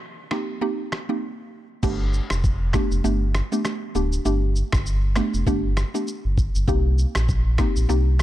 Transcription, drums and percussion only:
0.31 finger snap, cross-stick
0.92 finger snap, cross-stick
1.83 kick, crash, shaker
2.13 shaker
2.30 finger snap, cross-stick, shaker
2.44 kick, shaker
2.73 finger snap, kick, cross-stick, shaker
2.91 shaker
3.05 shaker
3.35 finger snap, cross-stick, shaker
3.52 shaker
3.65 finger snap, cross-stick, shaker
3.95 shaker
4.12 shaker
4.25 shaker
4.56 shaker
4.72 finger snap, kick, cross-stick, shaker
4.86 shaker
5.16 finger snap, cross-stick, shaker
5.34 shaker
5.47 kick, shaker
5.77 finger snap, cross-stick, shaker
5.95 shaker
6.07 shaker
6.38 kick, shaker
6.55 shaker
6.68 kick, shaker
6.98 shaker
7.15 finger snap, cross-stick, shaker
7.29 kick, shaker
7.58 finger snap, kick, cross-stick, shaker
7.76 shaker
7.90 shaker
8.19 finger snap, shaker

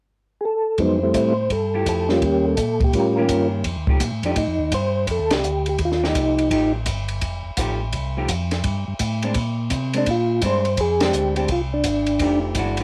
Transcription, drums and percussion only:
0.78 kick, ride
1.14 kick, hi-hat pedal, ride
1.50 kick, ride
1.86 kick, hi-hat pedal, ride
2.09 snare
2.22 kick, ride
2.57 kick, hi-hat pedal, ride
2.80 kick, ride
2.93 kick, ride
3.29 kick, hi-hat pedal, ride
3.64 kick, ride
3.87 kick
4.00 kick, hi-hat pedal, ride
4.23 ride
4.36 kick, ride
4.72 kick, hi-hat pedal, ride
5.07 kick, ride
5.31 snare, ride
5.44 hi-hat pedal
5.66 ride
5.78 kick, ride
5.92 snare
6.04 snare
6.15 kick, hi-hat pedal, ride
6.38 ride
6.51 kick, ride
6.86 kick, hi-hat pedal, ride
7.08 ride
7.21 kick, ride
7.57 kick, hi-hat pedal, ride
7.93 kick, ride
8.29 kick, hi-hat pedal, ride
8.51 snare, ride
8.64 kick, ride
8.99 kick, hi-hat pedal, ride
9.23 ride
9.34 kick, ride
9.70 kick, hi-hat pedal, ride
9.94 ride
10.06 kick, ride
10.42 kick, hi-hat pedal, ride
10.65 ride
10.77 kick, ride
11.01 snare, ride
11.13 hi-hat pedal
11.36 ride
11.48 kick, ride
11.84 kick, hi-hat pedal, ride
12.07 ride
12.19 kick, ride
12.55 kick, hi-hat pedal, ride
12.77 ride

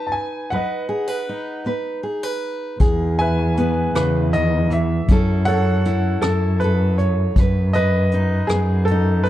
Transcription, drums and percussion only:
2.80 kick, closed hi-hat
3.19 closed hi-hat
3.57 closed hi-hat
3.95 cross-stick, closed hi-hat
4.33 closed hi-hat
4.71 closed hi-hat
5.08 kick, closed hi-hat
5.47 closed hi-hat
5.85 closed hi-hat
6.22 cross-stick, closed hi-hat
6.60 closed hi-hat
6.98 closed hi-hat
7.36 kick, closed hi-hat
7.74 closed hi-hat
8.11 closed hi-hat
8.49 cross-stick, closed hi-hat
8.87 closed hi-hat
9.25 closed hi-hat

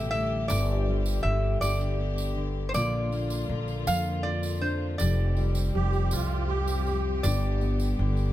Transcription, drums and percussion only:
0.12 tambourine
0.50 tambourine
1.06 tambourine
1.62 tambourine
1.81 tambourine
2.18 tambourine
2.74 tambourine
3.12 tambourine
3.30 tambourine
3.68 tambourine
3.87 tambourine
4.43 tambourine
4.62 tambourine
4.99 tambourine
5.37 tambourine
5.55 tambourine
5.93 tambourine
6.11 tambourine
6.68 tambourine
6.87 tambourine
7.24 tambourine
7.61 tambourine
7.80 tambourine
8.17 tambourine

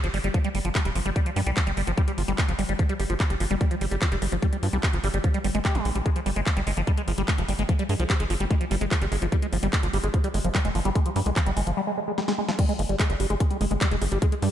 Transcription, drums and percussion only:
0.04 closed hi-hat
0.14 open hi-hat
0.24 closed hi-hat
0.34 kick, closed hi-hat
0.44 closed hi-hat
0.55 open hi-hat
0.65 closed hi-hat
0.75 kick, clap, closed hi-hat
0.85 closed hi-hat
0.95 open hi-hat
1.06 closed hi-hat
1.16 kick, closed hi-hat
1.26 closed hi-hat
1.36 open hi-hat
1.47 closed hi-hat
1.57 kick, clap, closed hi-hat
1.67 closed hi-hat
1.77 open hi-hat
1.87 closed hi-hat
1.98 kick, closed hi-hat
2.08 closed hi-hat
2.18 open hi-hat
2.28 closed hi-hat
2.38 kick, clap, closed hi-hat
2.49 closed hi-hat
2.59 open hi-hat
2.69 closed hi-hat
2.79 kick, closed hi-hat
2.89 closed hi-hat
3.00 open hi-hat
3.10 closed hi-hat
3.20 kick, clap, closed hi-hat
3.30 closed hi-hat
3.40 open hi-hat
3.51 closed hi-hat
3.61 kick, closed hi-hat
3.71 closed hi-hat
3.81 open hi-hat
3.91 closed hi-hat
4.02 kick, clap, closed hi-hat
4.12 closed hi-hat
4.22 open hi-hat
4.32 closed hi-hat
4.42 kick, closed hi-hat
4.53 closed hi-hat
4.63 open hi-hat
4.73 closed hi-hat
4.83 kick, clap, closed hi-hat
4.93 closed hi-hat
5.04 open hi-hat
5.14 closed hi-hat
5.24 kick, closed hi-hat
5.34 closed hi-hat
5.44 open hi-hat
5.55 closed hi-hat
5.65 kick, clap, closed hi-hat
5.75 closed hi-hat
5.85 open hi-hat
5.95 closed hi-hat
6.06 kick, closed hi-hat
6.16 closed hi-hat
6.26 open hi-hat
6.36 closed hi-hat
6.46 kick, clap, closed hi-hat
6.57 closed hi-hat
6.67 open hi-hat
6.77 closed hi-hat
6.87 kick, closed hi-hat
6.97 closed hi-hat
7.08 open hi-hat
7.18 closed hi-hat
7.28 kick, clap, closed hi-hat
7.38 closed hi-hat
7.48 open hi-hat
7.59 closed hi-hat
7.69 kick, closed hi-hat
7.79 closed hi-hat
7.89 open hi-hat
8.00 closed hi-hat
8.10 kick, clap, closed hi-hat
8.20 closed hi-hat
8.30 open hi-hat
8.40 closed hi-hat
8.51 kick, closed hi-hat
8.61 closed hi-hat
8.71 open hi-hat
8.81 closed hi-hat
8.91 kick, clap, closed hi-hat
9.02 closed hi-hat
9.12 open hi-hat
9.22 closed hi-hat
9.32 kick, closed hi-hat
9.42 closed hi-hat
9.53 open hi-hat
9.63 closed hi-hat
9.73 kick, clap, closed hi-hat
9.83 closed hi-hat
9.93 open hi-hat
10.04 closed hi-hat
10.14 kick, closed hi-hat
10.24 closed hi-hat
10.34 open hi-hat
10.44 closed hi-hat
10.55 kick, clap, closed hi-hat
10.65 closed hi-hat
10.75 open hi-hat
10.85 closed hi-hat
10.95 kick, closed hi-hat
11.06 closed hi-hat
11.16 open hi-hat
11.26 closed hi-hat
11.36 kick, clap, closed hi-hat
11.46 closed hi-hat
11.57 open hi-hat
11.67 closed hi-hat
12.18 snare
12.28 snare
12.48 snare
12.59 kick, closed hi-hat, crash
12.69 closed hi-hat
12.79 open hi-hat
12.89 closed hi-hat
13.00 kick, clap, closed hi-hat
13.10 closed hi-hat
13.20 open hi-hat
13.30 closed hi-hat
13.40 kick, closed hi-hat
13.51 closed hi-hat
13.61 open hi-hat
13.71 closed hi-hat
13.81 kick, clap, closed hi-hat
13.91 closed hi-hat
14.02 open hi-hat
14.12 closed hi-hat
14.22 kick, closed hi-hat
14.32 closed hi-hat
14.42 open hi-hat

